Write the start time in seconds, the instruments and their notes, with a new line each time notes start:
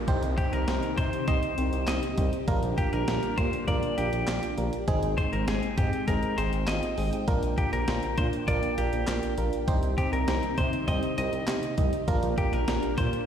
Already playing: downlifter
0.08 analog synth bass C2, string machine C3 C4 D#4 G4, fm electric piano C4 D#4 G4 C5, kick, closed hi-hat
0.23 analog synth bass C2, closed hi-hat
0.38 fm electric piano C4 D#4 G4 C5, clean electric guitar G4, kick, closed hi-hat
0.53 analog synth bass C2, clean electric guitar A#4, closed hi-hat
0.68 analog synth bass C2, fm electric piano C4 D#4 G4 C5, snare, closed hi-hat
0.83 closed hi-hat
0.98 analog synth bass C3, fm electric piano C4 D#4 G4 C5, clean electric guitar C5, kick, closed hi-hat
1.13 closed hi-hat
1.28 analog synth bass C2, fm electric piano C4 D#4 G4 D#5, clean electric guitar C5, kick, closed hi-hat
1.43 closed hi-hat
1.58 analog synth bass C2, fm electric piano C4 D#4 G4 C5, closed hi-hat
1.73 analog synth bass C2, closed hi-hat
1.88 analog synth bass C2, fm electric piano C4 D#4 G4 D#5, clean electric guitar D#5, snare, clap, closed hi-hat
2.03 closed hi-hat
2.18 analog synth bass C2, fm electric piano C4 D#4 G4 C5, kick, closed hi-hat
2.33 closed hi-hat
2.48 analog synth bass A#1, string machine A#3 D4, fm electric piano A#3 D4 F4 A#4, kick, closed hi-hat
2.63 analog synth bass A#1, closed hi-hat
2.78 fm electric piano A#3 D4 F4 A#4, clean electric guitar G4, kick, closed hi-hat
2.93 analog synth bass A#1, clean electric guitar A#4, closed hi-hat
3.08 analog synth bass A#1, fm electric piano A#3 D4 F4 A#4, snare, closed hi-hat
3.23 closed hi-hat
3.38 analog synth bass A#2, fm electric piano A#3 D4 F4 A#4, clean electric guitar C5, kick, closed hi-hat
3.53 closed hi-hat
3.68 analog synth bass A#1, fm electric piano A#3 D4 F4 A#4, clean electric guitar D5, kick, closed hi-hat
3.83 closed hi-hat
3.98 analog synth bass A#1, fm electric piano A#3 D4 F4 A#4, clean electric guitar G4, closed hi-hat
4.13 analog synth bass A#1, closed hi-hat
4.28 analog synth bass A#1, fm electric piano A#3 D4 F4 G4, snare, clap, closed hi-hat
4.43 closed hi-hat
4.58 analog synth bass A#1, fm electric piano A#3 D4 F4 A#4, closed hi-hat
4.73 closed hi-hat
4.88 analog synth bass G#1, fm electric piano G#3 C4 D#4 G#4, string machine G#3 C4 G5, kick, closed hi-hat
5.03 analog synth bass G#1, closed hi-hat
5.18 fm electric piano G#3 C4 D#4 G#4, clean electric guitar C5, kick, closed hi-hat
5.33 analog synth bass G#1, clean electric guitar A#4, closed hi-hat
5.48 analog synth bass G#1, fm electric piano G#3 C4 D#4 G#4, clean electric guitar G#4, snare, closed hi-hat
5.63 closed hi-hat
5.78 analog synth bass G#2, fm electric piano G#3 C4 D#4 G#4, clean electric guitar G4, kick, closed hi-hat
5.93 closed hi-hat
6.08 analog synth bass G#1, fm electric piano G#3 C4 D#4 G#4, clean electric guitar A#4, kick, closed hi-hat
6.23 closed hi-hat
6.38 analog synth bass G#1, fm electric piano G#3 C4 D#4 G#4, clean electric guitar C5, closed hi-hat
6.53 analog synth bass G#1, closed hi-hat
6.68 analog synth bass G#1, fm electric piano G#3 C4 D#4 F4, clean electric guitar D#5, snare, clap, closed hi-hat
6.83 closed hi-hat
6.98 analog synth bass G#1, fm electric piano G#3 C4 D#4 G#4, open hi-hat
7.13 closed hi-hat
7.28 analog synth bass A#1, fm electric piano A#3 D4 F4 A#4, string machine A#3 D4, kick, closed hi-hat
7.43 analog synth bass A#1, closed hi-hat
7.58 fm electric piano A#3 D4 F4, clean electric guitar G4, kick, closed hi-hat
7.73 analog synth bass A#1, clean electric guitar A#4, closed hi-hat
7.88 analog synth bass A#1, fm electric piano A#3 D4 F4 C5, snare, closed hi-hat
8.03 closed hi-hat
8.18 analog synth bass A#2, fm electric piano A#3 D4 F4 A#4, clean electric guitar C5, kick, closed hi-hat
8.33 closed hi-hat
8.48 analog synth bass A#1, fm electric piano A#3 D4 F4 A#4, clean electric guitar D5, kick, closed hi-hat
8.63 closed hi-hat
8.78 analog synth bass A#1, fm electric piano A#3 D4 F4 A#4, clean electric guitar G4, closed hi-hat
8.93 analog synth bass A#1, closed hi-hat
9.08 analog synth bass A#1, fm electric piano A#3 D4 F4 A#4, snare, clap, closed hi-hat
9.23 closed hi-hat
9.38 analog synth bass A#1, fm electric piano A#3 D4 F4 A#4, closed hi-hat
9.53 closed hi-hat
9.68 analog synth bass C2, string machine C3 C4 D#4 G4, fm electric piano C4 D#4 G4 C5, kick, closed hi-hat
9.83 analog synth bass C2, closed hi-hat
9.98 fm electric piano C4 D#4 G4 C5, clean electric guitar G4, kick, closed hi-hat
10.13 analog synth bass C2, clean electric guitar A#4, closed hi-hat
10.28 analog synth bass C2, fm electric piano C4 D#4 G4 C5, snare, closed hi-hat
10.43 closed hi-hat
10.58 analog synth bass C3, fm electric piano C4 D#4 G4 C5, clean electric guitar C5, kick, closed hi-hat
10.73 closed hi-hat
10.88 analog synth bass C2, fm electric piano C4 D#4 G4 C5, clean electric guitar D#5, kick, closed hi-hat
11.03 closed hi-hat
11.18 analog synth bass C2, fm electric piano C4 D#4 G4 C5, clean electric guitar D#5, closed hi-hat
11.33 analog synth bass C2, closed hi-hat
11.48 analog synth bass C2, fm electric piano C4 D#4 G4 C5, snare, clap, closed hi-hat
11.63 closed hi-hat
11.78 analog synth bass C2, fm electric piano C4 D#4 G4 D#5, kick, closed hi-hat
11.93 closed hi-hat
12.08 analog synth bass A#1, fm electric piano A#3 D4 F4 A#4, string machine A#3 D4, kick, closed hi-hat
12.23 analog synth bass A#1, closed hi-hat
12.38 fm electric piano A#3 D4 F4 A#4, clean electric guitar G4, kick, closed hi-hat
12.53 analog synth bass A#1, clean electric guitar A#4, closed hi-hat
12.68 analog synth bass A#1, fm electric piano A#3 D4 F4 A#4, snare, closed hi-hat
12.83 closed hi-hat
12.98 analog synth bass A#2, fm electric piano A#3 D4 F4 A#4, clean electric guitar C5, kick, closed hi-hat
13.13 closed hi-hat